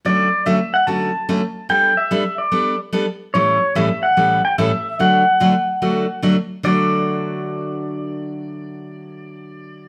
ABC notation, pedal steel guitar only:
X:1
M:4/4
L:1/8
Q:"Swing" 1/4=146
K:D
V:1 name="Pedal steel guitar"
d2 e f a4 | g e2 d2 z3 | c2 e f2 g e2 | f6 z2 |
d8- | d8 |]